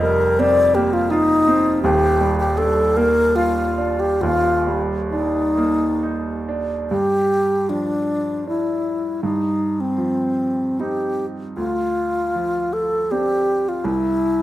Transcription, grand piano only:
0, 0, Header, 1, 2, 480
1, 0, Start_track
1, 0, Key_signature, -2, "minor"
1, 0, Tempo, 731707
1, 1208, Time_signature, 3, 2, 24, 8
1, 1696, Tempo, 790514
1, 2176, Tempo, 855920
1, 2656, Tempo, 890208
1, 4096, Tempo, 784314
1, 5056, Tempo, 748130
1, 6016, Tempo, 818554
1, 6496, Tempo, 780234
1, 7456, Tempo, 748130
1, 8788, End_track
2, 0, Start_track
2, 0, Title_t, "Grand piano"
2, 0, Program_c, 0, 0
2, 0, Control_c, 0, 64, 127
2, 0, Note_on_c, 0, 29, 76
2, 0, Note_on_c, 0, 41, 78
2, 14, Note_on_c, 0, 55, 60
2, 256, Note_on_c, 0, 60, 67
2, 401, Note_off_c, 0, 55, 0
2, 492, Note_on_c, 0, 58, 68
2, 636, Note_off_c, 0, 60, 0
2, 732, Note_on_c, 0, 65, 66
2, 872, Note_off_c, 0, 58, 0
2, 968, Note_on_c, 0, 60, 64
2, 1113, Note_off_c, 0, 65, 0
2, 1177, Note_off_c, 0, 29, 0
2, 1182, Note_off_c, 0, 41, 0
2, 1205, Note_on_c, 0, 27, 81
2, 1208, Note_off_c, 0, 60, 0
2, 1209, Note_on_c, 0, 39, 75
2, 1220, Control_c, 0, 64, 0
2, 1333, Control_c, 0, 64, 127
2, 1449, Note_on_c, 0, 55, 60
2, 1700, Note_on_c, 0, 62, 62
2, 1836, Note_off_c, 0, 55, 0
2, 1929, Note_on_c, 0, 58, 68
2, 2079, Note_off_c, 0, 62, 0
2, 2175, Note_on_c, 0, 65, 61
2, 2315, Note_off_c, 0, 58, 0
2, 2403, Note_on_c, 0, 62, 58
2, 2555, Note_off_c, 0, 65, 0
2, 2632, Note_off_c, 0, 27, 0
2, 2634, Note_off_c, 0, 39, 0
2, 2645, Note_on_c, 0, 27, 65
2, 2653, Note_off_c, 0, 62, 0
2, 2654, Note_on_c, 0, 39, 70
2, 2668, Control_c, 0, 64, 0
2, 2778, Control_c, 0, 64, 127
2, 2892, Note_on_c, 0, 55, 56
2, 3138, Note_on_c, 0, 62, 55
2, 3282, Note_off_c, 0, 55, 0
2, 3380, Note_on_c, 0, 58, 60
2, 3526, Note_off_c, 0, 62, 0
2, 3625, Note_on_c, 0, 63, 53
2, 3769, Note_off_c, 0, 58, 0
2, 3871, Note_on_c, 0, 62, 58
2, 4008, Note_off_c, 0, 63, 0
2, 4069, Note_off_c, 0, 27, 0
2, 4073, Note_off_c, 0, 39, 0
2, 4098, Note_off_c, 0, 62, 0
2, 4102, Note_on_c, 0, 43, 59
2, 4104, Control_c, 0, 64, 0
2, 4210, Control_c, 0, 64, 127
2, 4583, Note_on_c, 0, 53, 45
2, 5058, Note_on_c, 0, 62, 45
2, 5349, Note_off_c, 0, 53, 0
2, 5513, Note_off_c, 0, 62, 0
2, 5515, Note_off_c, 0, 43, 0
2, 5544, Note_on_c, 0, 43, 58
2, 5548, Control_c, 0, 64, 0
2, 5645, Control_c, 0, 64, 127
2, 6022, Note_on_c, 0, 53, 46
2, 6501, Note_on_c, 0, 60, 40
2, 6508, Note_on_c, 0, 63, 48
2, 6786, Note_off_c, 0, 53, 0
2, 6953, Note_off_c, 0, 43, 0
2, 6953, Note_off_c, 0, 60, 0
2, 6956, Note_off_c, 0, 63, 0
2, 6976, Note_on_c, 0, 38, 59
2, 6985, Control_c, 0, 64, 0
2, 7086, Control_c, 0, 64, 127
2, 7461, Note_on_c, 0, 53, 51
2, 7950, Note_on_c, 0, 60, 44
2, 7951, Note_on_c, 0, 62, 49
2, 8231, Note_off_c, 0, 53, 0
2, 8393, Note_off_c, 0, 38, 0
2, 8397, Note_off_c, 0, 60, 0
2, 8398, Note_off_c, 0, 62, 0
2, 8417, Note_on_c, 0, 36, 60
2, 8429, Control_c, 0, 64, 0
2, 8530, Control_c, 0, 64, 127
2, 8788, Note_off_c, 0, 36, 0
2, 8788, End_track
0, 0, End_of_file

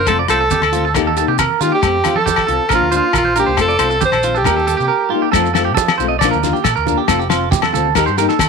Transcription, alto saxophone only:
0, 0, Header, 1, 2, 480
1, 0, Start_track
1, 0, Tempo, 438276
1, 73, Time_signature, 4, 2, 24, 8
1, 9297, End_track
2, 0, Start_track
2, 0, Title_t, "Alto saxophone"
2, 0, Program_c, 0, 65
2, 90, Note_on_c, 0, 69, 83
2, 194, Note_off_c, 0, 69, 0
2, 329, Note_on_c, 0, 69, 88
2, 1240, Note_off_c, 0, 69, 0
2, 1774, Note_on_c, 0, 65, 67
2, 1880, Note_off_c, 0, 65, 0
2, 1910, Note_on_c, 0, 67, 82
2, 2394, Note_on_c, 0, 69, 91
2, 2411, Note_off_c, 0, 67, 0
2, 2976, Note_off_c, 0, 69, 0
2, 3012, Note_on_c, 0, 65, 79
2, 3211, Note_off_c, 0, 65, 0
2, 3246, Note_on_c, 0, 65, 80
2, 3448, Note_off_c, 0, 65, 0
2, 3480, Note_on_c, 0, 65, 84
2, 3685, Note_off_c, 0, 65, 0
2, 3722, Note_on_c, 0, 67, 85
2, 3926, Note_off_c, 0, 67, 0
2, 3955, Note_on_c, 0, 69, 95
2, 4386, Note_off_c, 0, 69, 0
2, 4442, Note_on_c, 0, 72, 96
2, 4796, Note_on_c, 0, 67, 87
2, 4812, Note_off_c, 0, 72, 0
2, 5617, Note_off_c, 0, 67, 0
2, 9297, End_track
0, 0, End_of_file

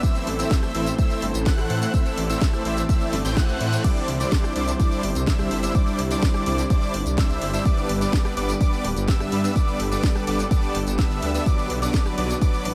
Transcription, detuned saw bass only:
0, 0, Header, 1, 2, 480
1, 0, Start_track
1, 0, Key_signature, 1, "major"
1, 0, Tempo, 476190
1, 34, Time_signature, 4, 2, 24, 8
1, 12842, End_track
2, 0, Start_track
2, 0, Title_t, "Detuned saw bass"
2, 0, Program_c, 0, 39
2, 274, Note_on_c, 0, 33, 102
2, 440, Note_off_c, 0, 33, 0
2, 752, Note_on_c, 0, 33, 90
2, 919, Note_off_c, 0, 33, 0
2, 1234, Note_on_c, 0, 31, 82
2, 1317, Note_off_c, 0, 31, 0
2, 1353, Note_on_c, 0, 33, 92
2, 1519, Note_off_c, 0, 33, 0
2, 1593, Note_on_c, 0, 33, 84
2, 1676, Note_off_c, 0, 33, 0
2, 1714, Note_on_c, 0, 45, 100
2, 1880, Note_off_c, 0, 45, 0
2, 2193, Note_on_c, 0, 33, 98
2, 2359, Note_off_c, 0, 33, 0
2, 2675, Note_on_c, 0, 33, 84
2, 2840, Note_off_c, 0, 33, 0
2, 3154, Note_on_c, 0, 31, 82
2, 3237, Note_off_c, 0, 31, 0
2, 3274, Note_on_c, 0, 33, 91
2, 3440, Note_off_c, 0, 33, 0
2, 3514, Note_on_c, 0, 33, 88
2, 3597, Note_off_c, 0, 33, 0
2, 3635, Note_on_c, 0, 45, 96
2, 3800, Note_off_c, 0, 45, 0
2, 4114, Note_on_c, 0, 36, 101
2, 4280, Note_off_c, 0, 36, 0
2, 4594, Note_on_c, 0, 36, 88
2, 4760, Note_off_c, 0, 36, 0
2, 5074, Note_on_c, 0, 31, 80
2, 5157, Note_off_c, 0, 31, 0
2, 5194, Note_on_c, 0, 36, 89
2, 5360, Note_off_c, 0, 36, 0
2, 5434, Note_on_c, 0, 36, 85
2, 5517, Note_off_c, 0, 36, 0
2, 5554, Note_on_c, 0, 31, 98
2, 5720, Note_off_c, 0, 31, 0
2, 6036, Note_on_c, 0, 36, 98
2, 6201, Note_off_c, 0, 36, 0
2, 6516, Note_on_c, 0, 36, 88
2, 6681, Note_off_c, 0, 36, 0
2, 6996, Note_on_c, 0, 31, 82
2, 7078, Note_off_c, 0, 31, 0
2, 7116, Note_on_c, 0, 36, 85
2, 7281, Note_off_c, 0, 36, 0
2, 7355, Note_on_c, 0, 36, 84
2, 7438, Note_off_c, 0, 36, 0
2, 7476, Note_on_c, 0, 31, 94
2, 7641, Note_off_c, 0, 31, 0
2, 7956, Note_on_c, 0, 31, 99
2, 8121, Note_off_c, 0, 31, 0
2, 8436, Note_on_c, 0, 31, 87
2, 8601, Note_off_c, 0, 31, 0
2, 8915, Note_on_c, 0, 26, 80
2, 8998, Note_off_c, 0, 26, 0
2, 9035, Note_on_c, 0, 31, 87
2, 9200, Note_off_c, 0, 31, 0
2, 9274, Note_on_c, 0, 31, 86
2, 9357, Note_off_c, 0, 31, 0
2, 9394, Note_on_c, 0, 43, 101
2, 9560, Note_off_c, 0, 43, 0
2, 9874, Note_on_c, 0, 31, 102
2, 10040, Note_off_c, 0, 31, 0
2, 10354, Note_on_c, 0, 31, 88
2, 10520, Note_off_c, 0, 31, 0
2, 10835, Note_on_c, 0, 31, 102
2, 10918, Note_off_c, 0, 31, 0
2, 10954, Note_on_c, 0, 31, 98
2, 11120, Note_off_c, 0, 31, 0
2, 11194, Note_on_c, 0, 31, 94
2, 11277, Note_off_c, 0, 31, 0
2, 11314, Note_on_c, 0, 38, 86
2, 11480, Note_off_c, 0, 38, 0
2, 11795, Note_on_c, 0, 35, 99
2, 11960, Note_off_c, 0, 35, 0
2, 12274, Note_on_c, 0, 35, 88
2, 12440, Note_off_c, 0, 35, 0
2, 12754, Note_on_c, 0, 33, 80
2, 12837, Note_off_c, 0, 33, 0
2, 12842, End_track
0, 0, End_of_file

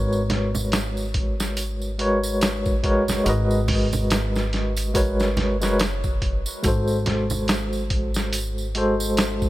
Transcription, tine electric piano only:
0, 0, Header, 1, 2, 480
1, 0, Start_track
1, 0, Key_signature, 5, "minor"
1, 0, Tempo, 845070
1, 1852, Time_signature, 4, 2, 24, 8
1, 5391, End_track
2, 0, Start_track
2, 0, Title_t, "Tine electric piano"
2, 0, Program_c, 0, 4
2, 0, Note_on_c, 0, 56, 76
2, 0, Note_on_c, 0, 66, 64
2, 0, Note_on_c, 0, 70, 72
2, 0, Note_on_c, 0, 71, 68
2, 0, Note_on_c, 0, 73, 87
2, 1104, Note_off_c, 0, 56, 0
2, 1108, Note_off_c, 0, 66, 0
2, 1111, Note_off_c, 0, 70, 0
2, 1115, Note_off_c, 0, 71, 0
2, 1118, Note_off_c, 0, 73, 0
2, 1128, Note_on_c, 0, 56, 81
2, 1131, Note_on_c, 0, 66, 75
2, 1135, Note_on_c, 0, 70, 76
2, 1138, Note_on_c, 0, 71, 79
2, 1143, Note_on_c, 0, 73, 97
2, 1586, Note_off_c, 0, 56, 0
2, 1588, Note_off_c, 0, 66, 0
2, 1589, Note_off_c, 0, 70, 0
2, 1591, Note_off_c, 0, 71, 0
2, 1594, Note_off_c, 0, 73, 0
2, 1608, Note_on_c, 0, 56, 86
2, 1612, Note_on_c, 0, 66, 81
2, 1616, Note_on_c, 0, 70, 85
2, 1619, Note_on_c, 0, 71, 77
2, 1623, Note_on_c, 0, 73, 101
2, 1826, Note_off_c, 0, 56, 0
2, 1828, Note_off_c, 0, 66, 0
2, 1830, Note_off_c, 0, 70, 0
2, 1832, Note_off_c, 0, 71, 0
2, 1833, Note_off_c, 0, 73, 0
2, 1840, Note_on_c, 0, 56, 83
2, 1849, Note_on_c, 0, 66, 78
2, 1855, Note_on_c, 0, 70, 81
2, 1864, Note_on_c, 0, 71, 81
2, 1869, Note_on_c, 0, 75, 98
2, 2782, Note_off_c, 0, 56, 0
2, 2786, Note_off_c, 0, 66, 0
2, 2790, Note_off_c, 0, 70, 0
2, 2794, Note_off_c, 0, 71, 0
2, 2797, Note_off_c, 0, 75, 0
2, 2806, Note_on_c, 0, 56, 83
2, 2809, Note_on_c, 0, 66, 75
2, 2813, Note_on_c, 0, 70, 72
2, 2817, Note_on_c, 0, 71, 76
2, 2822, Note_on_c, 0, 73, 85
2, 3155, Note_off_c, 0, 56, 0
2, 3157, Note_off_c, 0, 66, 0
2, 3159, Note_off_c, 0, 70, 0
2, 3161, Note_off_c, 0, 71, 0
2, 3163, Note_off_c, 0, 73, 0
2, 3187, Note_on_c, 0, 56, 95
2, 3191, Note_on_c, 0, 66, 86
2, 3195, Note_on_c, 0, 70, 86
2, 3197, Note_on_c, 0, 71, 92
2, 3202, Note_on_c, 0, 73, 99
2, 3293, Note_off_c, 0, 56, 0
2, 3295, Note_off_c, 0, 66, 0
2, 3297, Note_off_c, 0, 70, 0
2, 3298, Note_off_c, 0, 71, 0
2, 3300, Note_off_c, 0, 73, 0
2, 3763, Note_on_c, 0, 56, 79
2, 3773, Note_on_c, 0, 66, 74
2, 3782, Note_on_c, 0, 69, 73
2, 3792, Note_on_c, 0, 72, 83
2, 4944, Note_off_c, 0, 56, 0
2, 4948, Note_off_c, 0, 66, 0
2, 4953, Note_off_c, 0, 69, 0
2, 4958, Note_off_c, 0, 72, 0
2, 4970, Note_on_c, 0, 56, 90
2, 4975, Note_on_c, 0, 66, 80
2, 4980, Note_on_c, 0, 69, 79
2, 4986, Note_on_c, 0, 72, 97
2, 5391, Note_off_c, 0, 56, 0
2, 5391, Note_off_c, 0, 66, 0
2, 5391, Note_off_c, 0, 69, 0
2, 5391, Note_off_c, 0, 72, 0
2, 5391, End_track
0, 0, End_of_file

